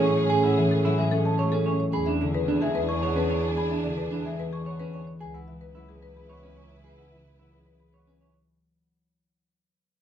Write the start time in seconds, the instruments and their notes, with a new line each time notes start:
Already playing: double bass section A2, harp E3 F#3 G#3 A3 C#4, string section C#4 G#4, french horn G#4
0.03 clean electric guitar C#5, marimba G#5
0.17 marimba C#5
0.30 clean electric guitar G#4, celesta G#5, marimba G#5
0.44 clean electric guitar E4, marimba F#5
0.57 harp E3, marimba E5
0.71 marimba A4
0.85 harp F#3, clean electric guitar E4, marimba E5
0.98 harp G#3, clean electric guitar G#4, marimba G#4, celesta E5
1.11 harp C#4, marimba A4
1.25 marimba G#4, celesta A5
1.39 harp A3, marimba C#5, clean electric guitar C#5
1.52 clean electric guitar C#4, marimba A4
1.66 clean electric guitar C#5, marimba G#5
1.80 marimba C#5
1.93 double bass section E2, string section D4 G#4, clean electric guitar G#4, french horn G#4, marimba G#5, celesta B5
2.06 clean electric guitar D4, marimba E5
2.21 harp D3, marimba D5
2.35 marimba B4
2.48 harp E3, clean electric guitar D4
2.62 harp G#3, marimba G#4, clean electric guitar G#4, celesta E5
2.75 marimba B4
2.89 marimba G#4, celesta C#6
3.03 harp B3, clean electric guitar C#5, marimba C#5
3.16 clean electric guitar C#4, marimba B4
3.30 clean electric guitar C#5, marimba G#5
3.43 marimba C#5
3.57 clean electric guitar G#4, marimba G#5, celesta B5
3.71 clean electric guitar D4, marimba E5
3.84 harp D3, marimba D5
3.97 marimba B4
4.12 harp E3, clean electric guitar D4
4.25 harp G#3, marimba G#4, clean electric guitar G#4, celesta E5
4.39 marimba B4
4.53 marimba G#4, celesta C#6
4.66 harp B3, marimba C#5, clean electric guitar C#5
4.80 clean electric guitar C#4, marimba B4
4.93 clean electric guitar C#5, marimba G#5
5.07 marimba C#5
5.21 double bass section C#2, string section E4 B4, clean electric guitar G#4, french horn B4, celesta G#5, marimba G#5
5.34 clean electric guitar E4, marimba F#5
5.48 harp E3, marimba E5
5.61 marimba B4
5.75 harp F#3, clean electric guitar E4
5.89 harp G#3, marimba G#4
6.02 marimba B4
6.17 marimba G#4, celesta B5
6.29 harp B3, clean electric guitar C#5, marimba C#5
6.43 clean electric guitar C#4, marimba B4
6.57 clean electric guitar C#5, marimba G#5
6.71 marimba C#5
6.84 clean electric guitar G#4, marimba G#5, celesta G#5
6.98 clean electric guitar E4, marimba F#5
7.12 harp E3, marimba E5
7.25 marimba B4
7.38 harp F#3, clean electric guitar E4
7.52 harp G#3, marimba G#4
7.66 marimba B4
7.80 marimba G#4, celesta B5
7.93 harp B3, marimba C#5, clean electric guitar C#5
8.07 clean electric guitar C#4, marimba B4
8.21 clean electric guitar C#5, marimba G#5
8.34 marimba C#5